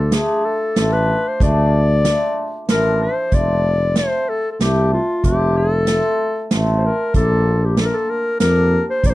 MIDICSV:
0, 0, Header, 1, 5, 480
1, 0, Start_track
1, 0, Tempo, 638298
1, 1050, Time_signature, 3, 2, 24, 8
1, 6873, End_track
2, 0, Start_track
2, 0, Title_t, "Clarinet"
2, 0, Program_c, 0, 71
2, 0, Note_on_c, 0, 69, 69
2, 103, Note_on_c, 0, 68, 78
2, 115, Note_off_c, 0, 69, 0
2, 344, Note_on_c, 0, 69, 88
2, 355, Note_off_c, 0, 68, 0
2, 697, Note_on_c, 0, 71, 81
2, 708, Note_off_c, 0, 69, 0
2, 961, Note_on_c, 0, 72, 69
2, 972, Note_off_c, 0, 71, 0
2, 1066, Note_off_c, 0, 72, 0
2, 1080, Note_on_c, 0, 74, 95
2, 1902, Note_off_c, 0, 74, 0
2, 2029, Note_on_c, 0, 70, 92
2, 2275, Note_on_c, 0, 72, 78
2, 2286, Note_off_c, 0, 70, 0
2, 2515, Note_on_c, 0, 74, 104
2, 2526, Note_off_c, 0, 72, 0
2, 2986, Note_off_c, 0, 74, 0
2, 2992, Note_on_c, 0, 72, 85
2, 3226, Note_on_c, 0, 69, 79
2, 3237, Note_off_c, 0, 72, 0
2, 3394, Note_off_c, 0, 69, 0
2, 3398, Note_on_c, 0, 69, 44
2, 3465, Note_on_c, 0, 67, 88
2, 3476, Note_off_c, 0, 69, 0
2, 3701, Note_off_c, 0, 67, 0
2, 3709, Note_on_c, 0, 65, 76
2, 3947, Note_on_c, 0, 67, 92
2, 3958, Note_off_c, 0, 65, 0
2, 4190, Note_on_c, 0, 69, 92
2, 4202, Note_off_c, 0, 67, 0
2, 4943, Note_off_c, 0, 69, 0
2, 5089, Note_on_c, 0, 72, 60
2, 5158, Note_on_c, 0, 70, 82
2, 5170, Note_off_c, 0, 72, 0
2, 5378, Note_off_c, 0, 70, 0
2, 5383, Note_on_c, 0, 69, 88
2, 5754, Note_on_c, 0, 67, 66
2, 5765, Note_off_c, 0, 69, 0
2, 5869, Note_on_c, 0, 69, 81
2, 5880, Note_off_c, 0, 67, 0
2, 5895, Note_on_c, 0, 70, 74
2, 5906, Note_off_c, 0, 69, 0
2, 5970, Note_on_c, 0, 69, 75
2, 5982, Note_off_c, 0, 70, 0
2, 6098, Note_on_c, 0, 70, 92
2, 6110, Note_off_c, 0, 69, 0
2, 6317, Note_off_c, 0, 70, 0
2, 6322, Note_on_c, 0, 70, 100
2, 6656, Note_off_c, 0, 70, 0
2, 6697, Note_on_c, 0, 72, 87
2, 6817, Note_on_c, 0, 74, 93
2, 6828, Note_off_c, 0, 72, 0
2, 6845, Note_on_c, 0, 72, 83
2, 6856, Note_off_c, 0, 74, 0
2, 6873, Note_off_c, 0, 72, 0
2, 6873, End_track
3, 0, Start_track
3, 0, Title_t, "Hammered dulcimer"
3, 0, Program_c, 1, 15
3, 86, Note_on_c, 1, 57, 58
3, 92, Note_on_c, 1, 62, 58
3, 99, Note_on_c, 1, 65, 65
3, 326, Note_off_c, 1, 57, 0
3, 329, Note_off_c, 1, 62, 0
3, 333, Note_off_c, 1, 65, 0
3, 569, Note_on_c, 1, 57, 68
3, 573, Note_on_c, 1, 62, 60
3, 579, Note_on_c, 1, 65, 82
3, 810, Note_off_c, 1, 57, 0
3, 811, Note_off_c, 1, 62, 0
3, 815, Note_off_c, 1, 65, 0
3, 1053, Note_on_c, 1, 57, 83
3, 1058, Note_on_c, 1, 62, 68
3, 1066, Note_on_c, 1, 68, 85
3, 1293, Note_off_c, 1, 57, 0
3, 1295, Note_off_c, 1, 62, 0
3, 1299, Note_off_c, 1, 68, 0
3, 1537, Note_on_c, 1, 57, 54
3, 1543, Note_on_c, 1, 62, 51
3, 1549, Note_on_c, 1, 65, 59
3, 1776, Note_off_c, 1, 57, 0
3, 1779, Note_off_c, 1, 62, 0
3, 1782, Note_off_c, 1, 65, 0
3, 2020, Note_on_c, 1, 53, 84
3, 2027, Note_on_c, 1, 62, 63
3, 2030, Note_on_c, 1, 64, 82
3, 2262, Note_off_c, 1, 62, 0
3, 2263, Note_off_c, 1, 64, 0
3, 2498, Note_on_c, 1, 57, 61
3, 2504, Note_on_c, 1, 60, 66
3, 2507, Note_on_c, 1, 65, 87
3, 2534, Note_off_c, 1, 53, 0
3, 2738, Note_off_c, 1, 57, 0
3, 2741, Note_off_c, 1, 60, 0
3, 2742, Note_off_c, 1, 65, 0
3, 2976, Note_on_c, 1, 57, 48
3, 2982, Note_on_c, 1, 60, 56
3, 2987, Note_on_c, 1, 65, 62
3, 3217, Note_off_c, 1, 57, 0
3, 3220, Note_off_c, 1, 60, 0
3, 3222, Note_off_c, 1, 65, 0
3, 3459, Note_on_c, 1, 57, 68
3, 3462, Note_on_c, 1, 60, 62
3, 3472, Note_on_c, 1, 65, 68
3, 3698, Note_off_c, 1, 57, 0
3, 3700, Note_off_c, 1, 60, 0
3, 3705, Note_off_c, 1, 65, 0
3, 3941, Note_on_c, 1, 57, 68
3, 3951, Note_on_c, 1, 60, 58
3, 3955, Note_on_c, 1, 65, 82
3, 4179, Note_off_c, 1, 57, 0
3, 4184, Note_off_c, 1, 60, 0
3, 4186, Note_off_c, 1, 65, 0
3, 4424, Note_on_c, 1, 57, 55
3, 4427, Note_on_c, 1, 60, 51
3, 4433, Note_on_c, 1, 65, 60
3, 4659, Note_off_c, 1, 57, 0
3, 4661, Note_off_c, 1, 60, 0
3, 4664, Note_off_c, 1, 65, 0
3, 4900, Note_on_c, 1, 57, 71
3, 4909, Note_on_c, 1, 60, 76
3, 4918, Note_on_c, 1, 65, 84
3, 5137, Note_off_c, 1, 57, 0
3, 5141, Note_off_c, 1, 60, 0
3, 5145, Note_off_c, 1, 65, 0
3, 5371, Note_on_c, 1, 58, 76
3, 5377, Note_on_c, 1, 62, 69
3, 5384, Note_on_c, 1, 65, 81
3, 5610, Note_off_c, 1, 58, 0
3, 5614, Note_off_c, 1, 62, 0
3, 5617, Note_off_c, 1, 65, 0
3, 5855, Note_on_c, 1, 58, 60
3, 5858, Note_on_c, 1, 62, 50
3, 5867, Note_on_c, 1, 65, 55
3, 6090, Note_off_c, 1, 58, 0
3, 6092, Note_off_c, 1, 62, 0
3, 6097, Note_off_c, 1, 65, 0
3, 6330, Note_on_c, 1, 58, 67
3, 6336, Note_on_c, 1, 62, 53
3, 6343, Note_on_c, 1, 67, 79
3, 6566, Note_off_c, 1, 58, 0
3, 6569, Note_off_c, 1, 62, 0
3, 6573, Note_off_c, 1, 67, 0
3, 6805, Note_on_c, 1, 58, 82
3, 6810, Note_on_c, 1, 62, 62
3, 6813, Note_on_c, 1, 65, 79
3, 6873, Note_off_c, 1, 58, 0
3, 6873, Note_off_c, 1, 62, 0
3, 6873, Note_off_c, 1, 65, 0
3, 6873, End_track
4, 0, Start_track
4, 0, Title_t, "Tuba"
4, 0, Program_c, 2, 58
4, 0, Note_on_c, 2, 38, 90
4, 183, Note_off_c, 2, 38, 0
4, 575, Note_on_c, 2, 33, 91
4, 862, Note_off_c, 2, 33, 0
4, 1056, Note_on_c, 2, 38, 102
4, 1633, Note_off_c, 2, 38, 0
4, 2020, Note_on_c, 2, 33, 75
4, 2307, Note_off_c, 2, 33, 0
4, 2498, Note_on_c, 2, 29, 86
4, 3074, Note_off_c, 2, 29, 0
4, 3462, Note_on_c, 2, 36, 93
4, 3748, Note_off_c, 2, 36, 0
4, 3940, Note_on_c, 2, 29, 89
4, 4514, Note_off_c, 2, 29, 0
4, 4901, Note_on_c, 2, 33, 89
4, 5186, Note_off_c, 2, 33, 0
4, 5370, Note_on_c, 2, 34, 102
4, 5943, Note_off_c, 2, 34, 0
4, 6321, Note_on_c, 2, 41, 98
4, 6608, Note_off_c, 2, 41, 0
4, 6796, Note_on_c, 2, 34, 89
4, 6873, Note_off_c, 2, 34, 0
4, 6873, End_track
5, 0, Start_track
5, 0, Title_t, "Drums"
5, 89, Note_on_c, 9, 38, 77
5, 89, Note_on_c, 9, 42, 57
5, 164, Note_off_c, 9, 38, 0
5, 164, Note_off_c, 9, 42, 0
5, 574, Note_on_c, 9, 38, 72
5, 574, Note_on_c, 9, 42, 56
5, 649, Note_off_c, 9, 38, 0
5, 649, Note_off_c, 9, 42, 0
5, 1056, Note_on_c, 9, 36, 76
5, 1062, Note_on_c, 9, 42, 41
5, 1131, Note_off_c, 9, 36, 0
5, 1137, Note_off_c, 9, 42, 0
5, 1540, Note_on_c, 9, 38, 74
5, 1540, Note_on_c, 9, 42, 56
5, 1615, Note_off_c, 9, 38, 0
5, 1615, Note_off_c, 9, 42, 0
5, 2020, Note_on_c, 9, 38, 73
5, 2020, Note_on_c, 9, 42, 51
5, 2096, Note_off_c, 9, 38, 0
5, 2096, Note_off_c, 9, 42, 0
5, 2495, Note_on_c, 9, 42, 36
5, 2497, Note_on_c, 9, 36, 76
5, 2570, Note_off_c, 9, 42, 0
5, 2573, Note_off_c, 9, 36, 0
5, 2975, Note_on_c, 9, 38, 72
5, 2975, Note_on_c, 9, 42, 48
5, 3050, Note_off_c, 9, 38, 0
5, 3050, Note_off_c, 9, 42, 0
5, 3464, Note_on_c, 9, 38, 72
5, 3464, Note_on_c, 9, 42, 57
5, 3539, Note_off_c, 9, 38, 0
5, 3539, Note_off_c, 9, 42, 0
5, 3939, Note_on_c, 9, 36, 61
5, 3941, Note_on_c, 9, 42, 43
5, 4014, Note_off_c, 9, 36, 0
5, 4016, Note_off_c, 9, 42, 0
5, 4413, Note_on_c, 9, 38, 69
5, 4413, Note_on_c, 9, 42, 50
5, 4489, Note_off_c, 9, 38, 0
5, 4489, Note_off_c, 9, 42, 0
5, 4894, Note_on_c, 9, 38, 75
5, 4894, Note_on_c, 9, 42, 47
5, 4969, Note_off_c, 9, 38, 0
5, 4969, Note_off_c, 9, 42, 0
5, 5371, Note_on_c, 9, 36, 74
5, 5372, Note_on_c, 9, 42, 42
5, 5446, Note_off_c, 9, 36, 0
5, 5448, Note_off_c, 9, 42, 0
5, 5844, Note_on_c, 9, 38, 70
5, 5844, Note_on_c, 9, 42, 46
5, 5919, Note_off_c, 9, 38, 0
5, 5919, Note_off_c, 9, 42, 0
5, 6318, Note_on_c, 9, 38, 73
5, 6318, Note_on_c, 9, 42, 52
5, 6393, Note_off_c, 9, 38, 0
5, 6393, Note_off_c, 9, 42, 0
5, 6795, Note_on_c, 9, 36, 68
5, 6797, Note_on_c, 9, 42, 39
5, 6870, Note_off_c, 9, 36, 0
5, 6872, Note_off_c, 9, 42, 0
5, 6873, End_track
0, 0, End_of_file